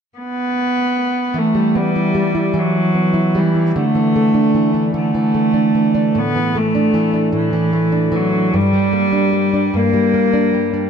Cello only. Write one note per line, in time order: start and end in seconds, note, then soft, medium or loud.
0.18 1.39 B3 medium
1.38 1.79 A3 medium
1.78 2.61 G3 medium
2.59 3.40 F#3 medium
3.39 3.77 E3 medium
3.78 4.92 A3 medium
4.98 6.20 A3 medium
6.18 6.59 B3 medium
6.57 7.35 A3 medium
7.36 8.17 E3 medium
8.15 8.57 F#3 medium
8.55 9.78 G3 medium
9.76 10.90 A#3 medium